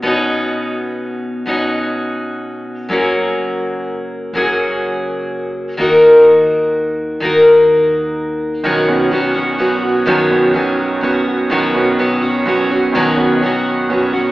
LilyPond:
<<
  \new Staff \with { instrumentName = "Upright piano" } { \time 3/4 \key b \major \tempo 4 = 126 r2. | r2. | r2. | r2. |
r2. | r2. | dis8 <b cis' fis'>8 cis'4 <b cis' fis'>8 fis'8 | dis8 <b cis' fis'>8 cis'4 <b cis' fis'>8 fis'8 |
dis8 <b cis' fis'>8 cis'4 <b cis' fis'>8 fis'8 | dis8 <b cis' fis'>8 cis'4 <b cis' fis'>8 fis'8 | }
  \new Staff \with { instrumentName = "Steel-string acoustic guitar" } { \time 3/4 \key b \major <b, b cis' dis' fis'>2. | <b, b cis' dis' fis'>2. | <fis, fis ais cis' fis' gis'>2. | <fis, fis ais cis' fis' gis'>2. |
<dis ais dis' fis' ais'>2. | <dis ais dis' fis' ais'>2. | <b, dis fis b cis' fis'>4 <fis b cis' fis'>8 <fis b cis' fis'>8 <fis b cis' fis'>4 | <b, dis fis b cis' fis'>4 <fis b cis' fis'>4 <fis b cis' fis'>4 |
<b, dis fis b cis' fis'>4 <fis b cis' fis'>8 <fis b cis' fis'>8 <fis b cis' fis'>8 <fis b cis' fis'>8 | <b, dis fis b cis' fis'>4 <fis b cis' fis'>4 <fis b cis' fis'>8 <fis b cis' fis'>8 | }
  \new Staff \with { instrumentName = "Upright bass" } { \clef bass \time 3/4 \key b \major r2. | r2. | fis,,2. | fis,,2. |
dis,2. | dis,2. | b,,2. | b,,2. |
b,,2. | b,,2. | }
>>